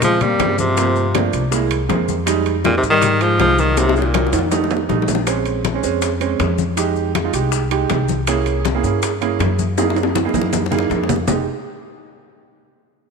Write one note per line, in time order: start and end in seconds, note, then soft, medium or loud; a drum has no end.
0.00 0.35 A#2 medium
0.00 0.28 C#3 medium
0.00 0.23 G#3 medium
0.00 0.28 G#3 medium
0.00 0.29 C4 medium
0.00 high bongo medium
0.00 high conga soft
0.00 low conga medium
0.00 high timbale medium
0.00 maracas medium
0.04 0.23 F3 loud
0.20 0.59 G3 medium
0.20 0.58 A#3 medium
0.20 high conga soft
0.20 low conga medium
0.20 high timbale medium
0.20 maracas soft
0.39 1.27 G2 medium
0.39 0.66 C#3 medium
0.39 0.66 G#3 medium
0.39 0.66 C4 medium
0.39 high bongo medium
0.39 low bongo medium
0.39 high conga medium
0.39 high timbale medium
0.39 low timbale medium
0.39 maracas soft
0.58 1.30 C3 medium
0.58 1.29 F3 medium
0.58 high bongo soft
0.58 high conga medium
0.58 maracas medium
0.76 1.03 F3 medium
0.76 1.03 A3 medium
0.76 1.03 A#3 medium
0.76 1.04 C4 medium
0.76 high bongo medium
0.76 high conga soft
0.76 high timbale medium
0.76 maracas medium
0.96 high bongo soft
0.96 high conga soft
0.96 maracas soft
1.14 1.41 F3 loud
1.14 1.41 A3 medium
1.14 1.41 A#3 medium
1.14 1.41 D4 medium
1.14 high bongo medium
1.14 high conga loud
1.14 high timbale loud
1.14 low timbale medium
1.14 maracas soft
1.33 1.85 C2 medium
1.33 high bongo soft
1.33 high conga soft
1.33 high timbale medium
1.33 maracas medium
1.51 1.78 G#3 medium
1.51 1.78 A#3 medium
1.51 1.79 E4 medium
1.51 high bongo medium
1.51 high conga soft
1.51 maracas medium
1.71 high conga soft
1.71 high timbale loud
1.71 maracas soft
1.89 2.77 F2 loud
1.89 2.15 G#3 medium
1.89 2.16 A#3 medium
1.89 2.16 C4 medium
1.89 high bongo medium
1.89 low bongo medium
1.89 high conga medium
1.89 high timbale medium
1.89 low timbale medium
1.89 maracas soft
2.08 high bongo soft
2.08 high conga medium
2.08 maracas medium
2.26 2.53 G3 loud
2.26 2.53 G#3 loud
2.26 2.54 D#4 loud
2.26 high bongo medium
2.26 high conga soft
2.26 high timbale loud
2.26 maracas loud
2.46 high bongo soft
2.46 high conga soft
2.46 high timbale medium
2.46 maracas soft
2.64 2.76 A#2 loud
2.64 2.76 D#3 medium
2.64 2.91 G3 medium
2.64 2.91 G#3 medium
2.64 2.91 D#4 medium
2.64 high bongo medium
2.64 high conga medium
2.64 high timbale medium
2.64 low timbale medium
2.64 maracas soft
2.77 2.83 C3 medium
2.77 2.83 D#3 medium
2.83 3.35 G#2 medium
2.83 high bongo soft
2.83 maracas medium
2.90 3.23 D#3 loud
2.90 3.23 G3 medium
3.01 3.28 G3 medium
3.01 3.28 G#3 medium
3.01 3.29 D#4 medium
3.01 high bongo medium
3.01 high conga soft
3.01 low conga medium
3.01 high timbale medium
3.01 maracas medium
3.21 3.40 F3 loud
3.21 3.39 G#3 medium
3.21 high conga soft
3.21 high timbale medium
3.21 maracas soft
3.39 4.27 C2 loud
3.39 3.61 F3 loud
3.39 3.66 G3 medium
3.39 3.66 G#3 medium
3.39 3.60 G#3 medium
3.39 3.66 D#4 medium
3.39 high bongo medium
3.39 low bongo medium
3.39 high conga medium
3.39 high timbale medium
3.39 low timbale medium
3.39 maracas soft
3.58 3.80 D#3 loud
3.58 3.78 G3 medium
3.58 high bongo soft
3.58 high conga medium
3.58 maracas medium
3.77 3.96 C3 loud
3.77 3.96 D#3 medium
3.77 4.03 F#3 medium
3.77 4.03 A#3 medium
3.77 4.04 D#4 medium
3.77 high bongo medium
3.77 high conga soft
3.77 high timbale medium
3.77 maracas loud
3.89 high bongo loud
3.96 4.49 A#2 medium
3.96 5.05 D#3 medium
3.96 high conga soft
3.96 maracas soft
4.02 high bongo medium
4.14 4.40 F#3 medium
4.14 4.41 A#3 medium
4.14 4.41 D#4 medium
4.14 low bongo medium
4.14 high conga loud
4.14 high timbale loud
4.14 low timbale medium
4.14 maracas soft
4.27 low bongo medium
4.33 4.85 F2 medium
4.33 high conga soft
4.33 high timbale medium
4.33 maracas medium
4.39 low bongo medium
4.51 4.78 G3 medium
4.51 4.78 A3 medium
4.51 4.78 D#4 loud
4.51 low bongo loud
4.51 high conga soft
4.51 high timbale medium
4.51 maracas medium
4.64 low bongo medium
4.70 high conga soft
4.70 low timbale loud
4.70 maracas soft
4.77 low bongo medium
4.89 5.78 A#1 loud
4.89 5.15 G3 medium
4.89 5.16 A3 medium
4.89 5.16 D#4 loud
4.89 low bongo medium
4.89 high conga medium
4.89 low timbale medium
4.89 maracas soft
5.02 low bongo medium
5.08 high conga medium
5.08 low timbale medium
5.08 maracas medium
5.15 low bongo medium
5.27 5.60 G#3 medium
5.27 5.60 C4 medium
5.27 5.60 C#4 loud
5.27 high bongo medium
5.27 high conga soft
5.27 high timbale medium
5.27 maracas medium
5.46 high bongo soft
5.46 high conga soft
5.46 high timbale medium
5.46 maracas soft
5.64 high bongo medium
5.64 high conga loud
5.64 high timbale medium
5.64 low timbale medium
5.64 maracas soft
5.74 5.81 G#3 medium
5.74 5.81 C4 medium
5.74 5.81 C#4 loud
5.83 6.36 F2 medium
5.83 6.10 G#3 medium
5.83 6.10 C4 medium
5.83 6.10 C#4 loud
5.83 high bongo soft
5.83 maracas medium
6.02 high bongo medium
6.02 high conga soft
6.02 high timbale medium
6.02 maracas medium
6.20 6.60 G#3 loud
6.20 6.60 C4 medium
6.20 6.61 C#4 loud
6.20 high conga soft
6.20 high timbale medium
6.20 maracas soft
6.39 7.28 F2 loud
6.39 high bongo medium
6.39 low bongo medium
6.39 high conga medium
6.39 high timbale medium
6.39 low timbale medium
6.39 maracas soft
6.58 high bongo soft
6.58 high conga medium
6.58 maracas medium
6.77 7.10 G#3 medium
6.77 7.10 D#4 medium
6.77 7.11 G4 loud
6.77 high bongo medium
6.77 high conga soft
6.77 high timbale medium
6.77 maracas medium
6.96 high bongo soft
6.96 high conga soft
6.96 maracas soft
7.15 high bongo medium
7.15 high conga medium
7.15 high timbale loud
7.15 low timbale medium
7.15 maracas soft
7.24 7.31 G#3 medium
7.24 7.31 D#4 medium
7.24 7.31 F4 medium
7.33 7.86 C2 medium
7.33 7.60 G#3 medium
7.33 7.60 D#4 medium
7.33 7.60 G4 medium
7.33 high bongo soft
7.33 high conga soft
7.33 high timbale medium
7.33 maracas medium
7.52 high bongo medium
7.52 high conga soft
7.52 maracas medium
7.71 8.10 G#3 medium
7.71 8.11 D#4 medium
7.71 8.11 G4 loud
7.71 high conga soft
7.71 high timbale medium
7.71 maracas soft
7.90 8.78 C2 medium
7.90 high bongo medium
7.90 low bongo medium
7.90 high conga medium
7.90 high timbale medium
7.90 low timbale medium
7.90 maracas soft
8.08 high bongo soft
8.08 high conga loud
8.08 maracas medium
8.27 8.61 A#3 medium
8.27 8.61 C#4 medium
8.27 8.61 E4 medium
8.27 8.61 G#4 loud
8.27 high bongo medium
8.27 high conga soft
8.27 high timbale loud
8.27 maracas medium
8.46 high bongo soft
8.46 high conga soft
8.46 high timbale medium
8.46 maracas soft
8.65 high bongo medium
8.65 high conga loud
8.65 high timbale medium
8.65 low timbale medium
8.65 maracas soft
8.75 8.81 A#3 medium
8.75 8.81 C#4 medium
8.75 8.81 E4 medium
8.75 8.82 G#4 medium
8.83 9.36 G2 medium
8.83 9.10 A#3 medium
8.83 9.10 C#4 medium
8.83 9.11 E4 medium
8.83 9.11 G#4 medium
8.83 high bongo soft
8.83 maracas medium
9.02 high bongo medium
9.02 high conga soft
9.02 high timbale medium
9.02 maracas medium
9.21 9.61 A#3 medium
9.21 9.61 C#4 medium
9.21 9.61 E4 medium
9.21 9.62 G#4 loud
9.21 high conga soft
9.21 high timbale medium
9.21 maracas soft
9.39 10.28 F#2 loud
9.39 high bongo medium
9.39 low bongo medium
9.39 high conga medium
9.39 high timbale medium
9.39 low timbale medium
9.39 maracas soft
9.59 high bongo soft
9.59 high conga medium
9.59 maracas medium
9.78 10.11 A#3 medium
9.78 10.11 D#4 medium
9.78 10.11 E4 medium
9.78 10.11 G#4 loud
9.78 high bongo medium
9.78 high conga soft
9.78 high timbale medium
9.78 maracas medium
9.90 high bongo medium
9.96 high conga soft
9.96 high timbale medium
9.96 maracas soft
10.03 high bongo medium
10.15 high bongo medium
10.15 high conga medium
10.15 high timbale medium
10.15 maracas soft
10.25 10.31 A#3 medium
10.25 10.32 D#4 medium
10.25 10.32 E4 medium
10.25 10.32 G#4 medium
10.29 low bongo medium
10.34 10.86 F#2 medium
10.34 10.60 A#3 medium
10.34 10.61 D#4 medium
10.34 10.61 E4 medium
10.34 10.61 G#4 medium
10.34 high conga medium
10.34 low timbale medium
10.34 maracas medium
10.41 low bongo medium
10.53 low bongo medium
10.53 high conga medium
10.53 low timbale medium
10.53 maracas medium
10.66 low bongo medium
10.71 11.11 A#3 loud
10.71 11.11 D#4 medium
10.71 11.11 E4 medium
10.71 11.12 G#4 loud
10.71 low conga medium
10.71 maracas soft
10.79 low bongo medium
10.90 11.23 F2 loud
10.90 low bongo loud
10.90 maracas soft
11.04 low bongo medium
11.09 low conga loud
11.09 low timbale medium
11.09 maracas medium
11.16 low bongo medium
11.27 11.45 F1 medium
11.27 11.45 G#3 medium
11.27 11.45 D#4 medium
11.27 11.45 G4 medium
11.27 low bongo medium
11.27 low conga medium
11.27 low timbale loud
11.27 maracas loud